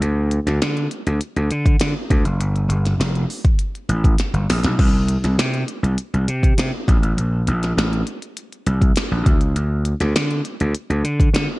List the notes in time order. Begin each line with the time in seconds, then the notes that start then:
0.01 D2, closed hi-hat
0.31 closed hi-hat
0.46 D2, snare, closed hi-hat
0.62 D3, snare, closed hi-hat
0.77 closed hi-hat
0.91 closed hi-hat
1.07 D2, closed hi-hat
1.21 closed hi-hat
1.36 D2, closed hi-hat
1.51 D3, closed hi-hat
1.66 kick, closed hi-hat
1.80 D3, snare, closed hi-hat
2.10 D2, kick, closed hi-hat
2.24 F#1, closed hi-hat
2.40 G1, closed hi-hat
2.56 closed hi-hat
2.69 G1, closed hi-hat
2.85 snare, closed hi-hat
2.99 F1, snare, closed hi-hat
3.15 closed hi-hat
3.30 open hi-hat
3.45 kick, closed hi-hat
3.59 closed hi-hat
3.75 closed hi-hat
3.89 A1, closed hi-hat
4.04 kick, closed hi-hat
4.18 snare, closed hi-hat
4.33 G1, closed hi-hat
4.49 A#1, snare, open hi-hat
4.64 B1, snare, closed hi-hat
4.79 C2, kick, crash
5.08 closed hi-hat
5.24 C2, snare, closed hi-hat
5.38 C3, snare, closed hi-hat
5.54 closed hi-hat
5.68 closed hi-hat
5.83 C2, closed hi-hat
5.98 closed hi-hat
6.14 C2, closed hi-hat
6.28 C3, closed hi-hat
6.43 kick, closed hi-hat
6.58 C3, snare, closed hi-hat
6.88 A#1, kick, closed hi-hat
7.02 A1, closed hi-hat
7.17 A#1, closed hi-hat
7.47 A#1, closed hi-hat
7.63 snare, closed hi-hat
7.77 A1, snare, closed hi-hat
7.93 closed hi-hat
8.07 closed hi-hat
8.22 closed hi-hat
8.37 closed hi-hat
8.53 closed hi-hat
8.66 C2, closed hi-hat
8.81 kick, closed hi-hat
8.96 snare, closed hi-hat
9.11 A#1
9.26 D2, kick, closed hi-hat
9.41 C#2, closed hi-hat
9.56 D2, closed hi-hat
9.85 closed hi-hat
10.00 D2, snare, closed hi-hat
10.16 D3, snare, closed hi-hat
10.31 closed hi-hat
10.45 closed hi-hat
10.60 D2, closed hi-hat
10.75 closed hi-hat
10.90 D2, closed hi-hat
11.04 D3, closed hi-hat
11.20 kick, closed hi-hat
11.34 D3, snare, closed hi-hat